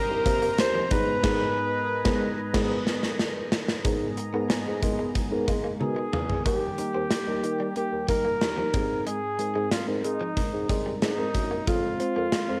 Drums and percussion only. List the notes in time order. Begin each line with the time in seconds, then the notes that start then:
0.26 kick, closed hi-hat
0.42 closed hi-hat
0.58 snare, closed hi-hat, tambourine
0.91 kick, closed hi-hat
1.23 kick, snare, crash
2.05 kick, snare
2.54 kick, snare, crash
2.87 snare
3.03 snare
3.19 snare
3.52 snare
3.68 snare
3.85 kick, closed hi-hat
4.17 closed hi-hat
4.50 snare, closed hi-hat
4.82 kick, closed hi-hat
5.15 kick, closed hi-hat
5.48 kick, closed hi-hat
5.81 high tom
6.13 mid tom
6.30 floor tom
6.46 kick, closed hi-hat
6.78 closed hi-hat
7.11 snare, closed hi-hat
7.44 closed hi-hat
7.76 closed hi-hat
8.09 kick, closed hi-hat
8.41 snare, closed hi-hat
8.74 kick, closed hi-hat
9.07 closed hi-hat
9.39 closed hi-hat
9.71 snare, closed hi-hat
10.04 closed hi-hat
10.37 kick, closed hi-hat
10.69 kick, closed hi-hat
11.02 snare, closed hi-hat
11.34 kick, closed hi-hat
11.67 kick, closed hi-hat
12.00 closed hi-hat
12.32 snare, closed hi-hat